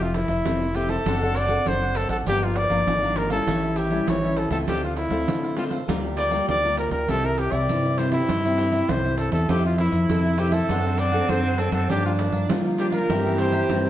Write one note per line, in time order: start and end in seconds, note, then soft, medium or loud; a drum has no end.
0.00 0.24 F1 medium
0.00 0.43 F3 medium
0.00 0.10 A3 medium
0.00 0.10 C4 medium
0.00 0.10 E4 medium
0.00 0.17 F4 medium
0.00 0.14 A4 soft
0.00 0.14 C5 soft
0.00 0.14 E5 soft
0.00 pandeiro soft
0.14 0.77 E4 medium
0.14 muted cavaquinho stroke soft
0.14 pandeiro medium
0.28 0.42 F1 medium
0.28 0.59 A4 soft
0.28 0.59 C5 medium
0.28 0.59 E5 medium
0.28 pandeiro soft
0.45 0.97 F1 medium
0.45 1.03 C3 medium
0.45 0.64 A3 medium
0.45 0.64 C4 medium
0.45 0.64 E4 medium
0.45 pandeiro medium
0.62 0.74 A4 soft
0.62 0.75 C5 soft
0.62 0.75 E5 soft
0.62 pandeiro soft
0.75 0.95 A3 soft
0.75 0.95 C4 soft
0.75 0.96 E4 medium
0.75 0.89 F4 soft
0.75 0.91 G4 medium
0.75 0.89 A4 medium
0.75 0.88 C5 soft
0.75 0.87 E5 medium
0.75 pandeiro medium
0.88 1.38 A4 medium
0.88 1.04 A4 medium
0.88 1.04 C5 medium
0.88 1.04 E5 medium
0.88 pandeiro medium
1.06 1.57 F#1 medium
1.06 1.64 F#3 soft
1.06 1.17 C4 soft
1.06 1.20 D4 medium
1.06 1.17 D4 soft
1.06 1.17 A4 medium
1.06 1.20 C5 medium
1.06 1.20 D5 medium
1.06 1.20 F#5 medium
1.06 pandeiro medium
1.22 1.47 C4 medium
1.22 1.47 D4 medium
1.22 1.48 A4 medium
1.22 1.34 C5 soft
1.22 1.34 D5 soft
1.22 1.35 F#5 soft
1.22 pandeiro soft
1.35 1.49 D4 medium
1.35 1.49 C5 medium
1.35 1.48 D5 medium
1.35 1.69 D5 medium
1.35 1.48 F#5 medium
1.35 pandeiro medium
1.49 1.61 C4 medium
1.49 1.61 D4 medium
1.49 1.61 A4 medium
1.49 1.80 C5 medium
1.49 1.80 D5 medium
1.49 1.79 F#5 medium
1.49 pandeiro soft
1.66 2.05 F#1 medium
1.66 2.24 F#3 medium
1.66 2.22 C4 medium
1.66 2.23 D4 soft
1.66 2.23 A4 medium
1.66 1.98 C5 medium
1.66 pandeiro medium
1.82 1.94 C5 soft
1.82 1.95 D5 soft
1.82 1.95 F#5 soft
1.82 pandeiro soft
1.95 2.10 A4 medium
1.95 muted cavaquinho stroke soft
1.95 pandeiro medium
2.09 2.23 A1 medium
2.09 2.18 A4 medium
2.09 2.25 C5 soft
2.09 2.25 D5 soft
2.09 2.24 F#5 soft
2.09 pandeiro medium
2.26 2.65 G1 loud
2.26 2.85 G2 medium
2.26 2.68 F3 soft
2.26 2.68 A#3 soft
2.26 2.68 D4 medium
2.26 2.41 G4 medium
2.26 2.45 G4 medium
2.26 2.41 A#4 medium
2.26 2.41 D5 medium
2.26 2.41 F5 medium
2.26 pandeiro medium
2.42 2.59 F4 medium
2.42 2.55 A#4 soft
2.42 2.55 D5 soft
2.42 2.56 F5 soft
2.42 pandeiro soft
2.56 3.19 D5 medium
2.56 muted cavaquinho stroke soft
2.56 pandeiro medium
2.69 2.84 G1 medium
2.69 2.96 F3 medium
2.69 2.97 A#3 medium
2.69 2.97 D4 medium
2.69 3.00 A#4 medium
2.69 3.00 D5 medium
2.69 3.00 F5 medium
2.69 pandeiro medium
2.87 3.38 G#1 medium
2.87 3.45 D3 soft
2.87 pandeiro medium
3.03 3.28 F3 medium
3.03 3.28 A#3 medium
3.03 3.29 D4 medium
3.03 3.15 A#4 soft
3.03 3.16 D5 soft
3.03 3.16 F5 soft
3.03 pandeiro soft
3.16 3.30 G4 soft
3.16 3.30 A#4 medium
3.16 3.31 A#4 medium
3.16 3.29 D5 soft
3.16 3.28 F5 medium
3.16 pandeiro medium
3.30 3.87 G3 medium
3.30 3.87 C#4 medium
3.30 3.88 E4 medium
3.30 3.78 A4 medium
3.30 3.46 A#4 medium
3.30 3.45 D5 medium
3.30 3.45 F5 medium
3.30 pandeiro medium
3.47 3.99 A1 loud
3.47 4.05 A2 soft
3.47 3.61 G4 medium
3.47 3.62 A4 medium
3.47 3.62 C#5 medium
3.47 3.62 E5 medium
3.47 pandeiro medium
3.63 3.76 A4 soft
3.63 3.76 C#5 soft
3.63 3.77 E5 soft
3.63 pandeiro soft
3.76 3.91 G4 medium
3.76 4.10 G4 medium
3.76 3.91 A4 medium
3.76 3.90 C#5 medium
3.76 3.89 E5 medium
3.76 pandeiro medium
3.90 4.17 G3 medium
3.90 4.17 C#4 medium
3.90 4.18 E4 medium
3.90 4.21 A4 soft
3.90 4.21 C#5 medium
3.90 4.21 E5 medium
3.90 pandeiro soft
4.08 4.46 A1 medium
4.08 4.65 E3 medium
4.08 4.39 C#5 medium
4.08 pandeiro medium
4.23 4.49 G3 medium
4.23 4.49 C#4 medium
4.23 4.49 E4 medium
4.23 4.36 A4 soft
4.23 4.36 C#5 soft
4.23 4.36 E5 soft
4.23 pandeiro soft
4.37 4.51 A4 medium
4.37 muted cavaquinho stroke soft
4.37 pandeiro medium
4.50 4.65 C#2 medium
4.50 5.08 A3 medium
4.50 5.08 C4 medium
4.50 5.08 F4 medium
4.50 4.58 A4 medium
4.50 4.66 A4 soft
4.50 4.66 C#5 soft
4.50 4.66 E5 soft
4.50 pandeiro medium
4.68 5.07 D2 medium
4.68 5.25 D3 medium
4.68 4.82 D4 medium
4.68 4.82 G4 medium
4.68 4.82 A4 medium
4.68 4.82 C5 medium
4.68 4.82 F5 medium
4.68 pandeiro medium
4.83 4.96 F4 medium
4.83 4.96 A4 soft
4.83 4.96 C5 soft
4.83 4.96 F5 soft
4.83 pandeiro soft
4.97 5.54 E4 medium
4.97 muted cavaquinho stroke soft
4.97 pandeiro medium
5.10 5.25 D2 medium
5.10 5.53 A3 medium
5.10 5.53 C4 medium
5.10 5.42 A4 medium
5.10 5.41 C5 medium
5.10 5.41 F5 medium
5.10 pandeiro soft
5.28 5.86 A2 medium
5.28 5.80 D3 medium
5.28 pandeiro medium
5.44 5.56 A4 soft
5.44 5.57 C5 soft
5.44 5.57 F5 soft
5.44 pandeiro soft
5.57 5.76 A3 medium
5.57 5.76 C4 medium
5.57 5.72 D4 soft
5.57 5.65 F4 medium
5.57 5.76 F4 medium
5.57 5.71 A4 soft
5.57 5.70 C5 medium
5.57 5.69 F5 medium
5.57 pandeiro medium
5.71 5.87 A4 medium
5.71 5.86 C5 medium
5.71 5.86 F5 medium
5.71 pandeiro medium
5.88 6.40 D2 loud
5.88 6.46 D3 soft
5.88 6.29 G3 medium
5.88 6.29 A#3 soft
5.88 6.02 F4 medium
5.88 6.29 F4 medium
5.88 6.03 A#4 medium
5.88 6.03 D5 medium
5.88 6.03 G5 medium
5.88 pandeiro medium
6.04 6.16 A#4 soft
6.04 6.17 D5 soft
6.04 6.17 G5 soft
6.04 pandeiro soft
6.17 6.32 F4 medium
6.17 6.31 A#4 medium
6.17 6.46 D5 medium
6.17 6.31 D5 medium
6.17 6.30 G5 medium
6.17 pandeiro medium
6.31 6.58 G3 medium
6.31 6.58 A#3 medium
6.31 6.59 F4 medium
6.31 6.62 A#4 medium
6.31 6.62 D5 medium
6.31 6.61 G5 medium
6.31 pandeiro medium
6.48 6.87 D2 medium
6.48 7.06 D3 soft
6.48 6.77 D5 loud
6.48 pandeiro medium
6.64 7.05 G3 medium
6.64 7.05 A#3 medium
6.64 7.05 F4 medium
6.64 6.76 A#4 soft
6.64 6.76 D5 soft
6.64 6.77 G5 soft
6.64 pandeiro soft
6.77 6.91 A#4 medium
6.77 muted cavaquinho stroke soft
6.77 pandeiro medium
6.91 7.05 D2 medium
6.91 7.11 A#4 medium
6.91 7.07 A#4 soft
6.91 7.07 D5 soft
6.91 7.06 G5 soft
6.91 pandeiro medium
7.08 7.48 C2 medium
7.08 7.66 C3 medium
7.08 7.48 G3 medium
7.08 7.48 C4 medium
7.08 7.22 E4 medium
7.08 7.48 E4 medium
7.08 7.23 G4 medium
7.08 7.27 A4 loud
7.08 7.23 C5 medium
7.08 7.23 E5 medium
7.08 pandeiro medium
7.24 7.37 G4 soft
7.24 7.40 A#4 medium
7.24 7.37 C5 soft
7.24 7.37 E5 soft
7.24 pandeiro soft
7.38 7.54 G4 medium
7.38 muted cavaquinho stroke soft
7.38 pandeiro medium
7.51 7.66 C2 medium
7.51 7.82 G4 medium
7.51 7.82 C5 medium
7.51 8.00 D5 medium
7.51 7.82 E5 medium
7.51 pandeiro medium
7.69 8.26 G2 medium
7.69 8.20 C3 medium
7.69 7.95 G3 medium
7.69 7.95 C4 soft
7.69 7.95 E4 soft
7.69 pandeiro medium
7.85 7.97 G4 soft
7.85 7.97 C5 soft
7.85 7.98 E5 soft
7.85 pandeiro soft
7.98 8.27 G3 soft
7.98 8.27 C4 medium
7.98 8.12 E4 soft
7.98 8.28 E4 medium
7.98 8.12 G4 medium
7.98 8.11 C5 medium
7.98 8.10 E5 medium
7.98 pandeiro medium
8.12 8.91 E4 medium
8.12 8.27 G4 medium
8.12 8.27 C5 medium
8.12 8.27 E5 medium
8.12 pandeiro medium
8.29 8.81 G2 loud
8.29 8.43 E4 medium
8.29 8.43 G4 medium
8.29 8.43 C5 medium
8.29 8.44 E5 medium
8.29 pandeiro medium
8.45 8.85 G3 medium
8.45 8.85 C4 medium
8.45 8.86 E4 medium
8.45 8.57 G4 soft
8.45 8.57 C5 soft
8.45 8.58 E5 soft
8.45 pandeiro soft
8.58 8.72 E4 medium
8.58 8.72 G4 medium
8.58 8.71 C5 medium
8.58 8.71 E5 medium
8.58 pandeiro medium
8.72 9.03 G4 soft
8.72 9.02 C5 medium
8.72 9.02 E5 medium
8.72 pandeiro soft
8.89 9.28 C2 medium
8.89 9.47 G2 medium
8.89 9.45 G3 soft
8.89 9.45 C4 medium
8.89 9.45 E4 medium
8.89 9.18 C5 medium
8.89 pandeiro medium
9.04 9.17 G4 soft
9.04 9.17 C5 soft
9.04 9.17 E5 soft
9.04 pandeiro soft
9.18 9.32 A4 medium
9.18 muted cavaquinho stroke soft
9.18 pandeiro medium
9.32 9.46 E2 medium
9.32 9.48 G4 soft
9.32 9.51 A4 medium
9.32 9.47 C5 soft
9.32 9.47 E5 soft
9.32 pandeiro medium
9.48 9.88 F2 loud
9.48 10.07 F3 medium
9.48 10.05 C4 medium
9.48 10.66 E4 loud
9.48 10.05 E4 medium
9.48 9.63 F4 medium
9.48 9.65 G4 medium
9.48 9.63 A4 medium
9.48 10.05 A4 medium
9.48 9.63 C5 medium
9.48 9.63 E5 medium
9.48 pandeiro medium
9.64 9.79 F4 medium
9.64 9.77 A4 soft
9.64 9.77 C5 soft
9.64 9.77 E5 soft
9.64 pandeiro soft
9.78 10.41 E4 medium
9.78 muted cavaquinho stroke soft
9.78 pandeiro medium
9.91 10.06 F2 medium
9.91 10.22 A4 soft
9.91 10.22 C5 medium
9.91 10.22 E5 medium
9.91 pandeiro medium
10.09 10.61 F2 medium
10.09 10.67 C3 medium
10.09 10.35 C4 soft
10.09 10.35 E4 medium
10.09 10.35 A4 medium
10.09 pandeiro medium
10.25 10.37 A4 soft
10.25 10.38 C5 soft
10.25 10.38 E5 soft
10.25 pandeiro soft
10.38 10.67 C4 medium
10.38 10.67 E4 soft
10.38 10.53 F4 medium
10.38 10.55 G4 medium
10.38 10.52 A4 soft
10.38 10.67 A4 medium
10.38 10.51 C5 medium
10.38 10.50 E5 medium
10.38 pandeiro medium
10.52 11.00 A4 medium
10.52 10.68 A4 medium
10.52 10.67 C5 medium
10.52 10.67 E5 medium
10.52 pandeiro medium
10.69 11.21 F#2 medium
10.69 11.27 F#3 soft
10.69 11.91 C4 loud
10.69 10.79 C4 soft
10.69 10.83 D4 medium
10.69 10.79 D4 soft
10.69 10.79 A4 medium
10.69 10.84 C5 medium
10.69 10.84 D5 medium
10.69 10.84 F#5 medium
10.69 pandeiro medium
10.85 11.11 C4 soft
10.85 11.11 D4 soft
10.85 11.11 A4 medium
10.85 10.97 C5 soft
10.85 10.98 D5 soft
10.85 10.98 F#5 soft
10.85 pandeiro soft
10.98 11.13 D4 medium
10.98 11.12 C5 medium
10.98 11.31 D5 medium
10.98 11.11 D5 medium
10.98 11.10 F#5 medium
10.98 pandeiro medium
11.12 11.24 C4 medium
11.12 11.24 D4 medium
11.12 11.25 A4 medium
11.12 11.43 C5 medium
11.12 11.42 D5 medium
11.12 11.42 F#5 medium
11.12 pandeiro medium
11.29 11.68 F#2 medium
11.29 11.87 F#3 medium
11.29 11.55 C4 soft
11.29 11.56 D4 medium
11.29 11.56 A4 medium
11.29 11.60 C5 medium
11.29 pandeiro medium
11.45 11.58 C5 soft
11.45 11.58 D5 soft
11.45 11.58 F#5 soft
11.45 pandeiro soft
11.58 11.84 C4 soft
11.58 11.85 D4 medium
11.58 11.72 A4 medium
11.58 11.85 A4 medium
11.58 muted cavaquinho stroke soft
11.58 pandeiro medium
11.72 11.86 F#2 medium
11.72 11.88 A4 medium
11.72 11.88 C5 soft
11.72 11.88 D5 soft
11.72 11.87 F#5 soft
11.72 pandeiro medium
11.89 12.28 G2 loud
11.89 12.47 G2 medium
11.89 12.45 F3 medium
11.89 12.45 A#3 medium
11.89 12.51 D4 loud
11.89 12.46 D4 medium
11.89 12.03 G4 medium
11.89 12.04 G4 medium
11.89 12.04 A#4 medium
11.89 12.04 D5 medium
11.89 12.04 F5 medium
11.89 pandeiro medium
12.06 12.12 F4 medium
12.06 12.18 A#4 soft
12.06 12.18 D5 soft
12.06 12.18 F5 medium
12.06 pandeiro soft
12.19 muted cavaquinho stroke soft
12.19 pandeiro medium
12.32 12.46 G2 medium
12.32 12.63 A#4 soft
12.32 12.63 D5 medium
12.32 12.62 F5 medium
12.32 pandeiro soft
12.49 13.07 D3 medium
12.49 12.75 F3 soft
12.49 13.01 G3 medium
12.49 12.75 A#3 medium
12.49 12.75 D4 medium
12.49 13.11 F4 medium
12.49 pandeiro medium
12.65 12.77 A#4 soft
12.65 12.78 D5 soft
12.65 12.78 F5 soft
12.65 pandeiro soft
12.78 13.07 F3 medium
12.78 13.07 A#3 soft
12.78 13.07 D4 medium
12.78 12.93 G4 soft
12.78 12.86 G4 medium
12.78 12.92 A#4 soft
12.78 12.91 D5 medium
12.78 12.90 F5 medium
12.78 pandeiro medium
12.92 13.08 A#4 medium
12.92 13.36 A#4 medium
12.92 13.07 D5 medium
12.92 13.07 F5 medium
12.92 pandeiro medium
13.09 13.61 G2 loud
13.09 13.67 G2 soft
13.09 13.20 E3 soft
13.09 13.20 A#3 medium
13.09 13.20 C4 soft
13.09 13.23 E4 medium
13.09 13.90 G4 loud
13.09 13.23 A#4 medium
13.09 13.24 C5 medium
13.09 13.23 E5 medium
13.09 pandeiro medium
13.25 13.66 E3 medium
13.25 13.66 A#3 medium
13.25 13.66 C4 medium
13.25 13.37 A#4 soft
13.25 13.38 C5 soft
13.25 13.38 E5 soft
13.25 pandeiro soft
13.38 13.53 E4 medium
13.38 13.52 A#4 medium
13.38 13.51 C5 medium
13.38 13.90 C5 medium
13.38 13.50 E5 medium
13.38 pandeiro medium
13.52 13.83 A#4 medium
13.52 13.82 C5 medium
13.52 13.82 E5 medium
13.52 pandeiro medium
13.69 13.90 G2 medium
13.69 13.90 E3 medium
13.69 13.90 A#3 medium
13.69 13.90 C4 medium
13.69 pandeiro medium
13.85 13.90 A#4 soft
13.85 13.90 C5 soft
13.85 13.90 E5 soft
13.85 pandeiro soft